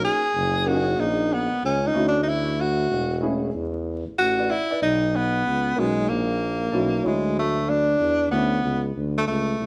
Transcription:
Already playing: A#3 C#4 D#4 F#4
0.04 G#4
0.35 F#1
0.66 A#3 C#4 D#4 F#4 G4
0.75 G#4
0.98 A#1 D#4
1.33 B3
1.52 C#2
1.63 C#2 C#4
1.87 D#4
1.94 D2 A3 C#4 E4 F#4
2.08 D4
2.23 D#4
2.29 E4
2.61 F#4
2.91 E1
3.21 A3 C#4 E4 G#4
3.55 E2
4.07 A1
4.18 A1 F#4
4.39 B4 D5
4.50 E4 D5 F#5
4.71 B4 D5
4.82 B1 D#4
5.16 B3
5.46 C#2
5.76 B1 G#3 A#3 C#4 D#4 F#4
6.09 A#1 A#3
6.72 B1 C#4 E4 F#4 A4
7.03 D2 F#3 G#3 E4 F#4 C#5
7.39 A3
7.69 D4
8.00 E2
8.31 D2 A3 B3 C#4 E4 A4
8.63 C#2
8.96 D2
9.18 A3
9.28 C#2 A3
9.60 C2

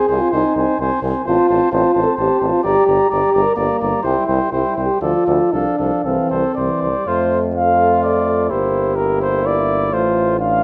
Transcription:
Already playing: G#4
0.09 C2 C4 C5 G#5
0.19 F4
0.31 C2 C4 D#4 C5 G#5
0.56 C2 C4 C5 G#5
0.79 C2 C4 C5 G#5
1.02 C2 C4 C5 G#5
1.25 A1 C4 F4 C5 A5
1.49 A1 C4 C5 A5
1.72 A1 C4 F4 C5 A5
1.94 A1 C4 C5 A5
2.03 A4
2.16 A1 C4 G4 C5 A5
2.40 A1 C4 C5 A5
2.49 F4
2.63 G1 G3 G4 D5 A#5
2.86 G1 G3 D5 A#5
3.10 G1 G3 G4 D5 A#5
3.33 G1 G3 D5 A#5
3.42 A#4
3.56 G1 G3 A#3 D5 A#5
3.79 G1 G3 D5 A#5
4.03 C2 G3 E4 C5 G5
4.27 C2 G3 C5 G5
4.52 C2 G3 E4 C5 G5
4.76 C2 G3 C5 G5
4.86 G4
5.01 D2 F3 F4 A4 D5
5.26 D2 F3 A4 D5
5.52 C2 F3 D4 A4 F5
5.78 C2 F3 A4 F5
6.04 C2 E3 C4 A4 F5
6.30 C2 A4 C5
6.55 C2 E3 C5 D5
6.83 C2 C5
6.92 G3
7.07 F2 A3 F4 C5
7.55 A3 F4 A4 F5
8.03 D5
8.49 G1 A#3 E4 G4 C5
8.96 A#3 E4 A#4
9.22 C5
9.45 E4 D5
9.92 A1 A3 F4 C5
10.40 A3 D4 F4 F5

